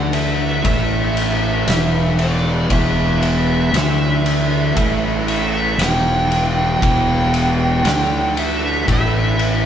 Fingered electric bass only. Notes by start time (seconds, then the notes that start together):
Already playing: D2
0.65 A1
1.67 E1
2.70 E1
3.72 D2
4.77 A1
5.78 E1
6.82 E1
7.84 D2
8.88 A1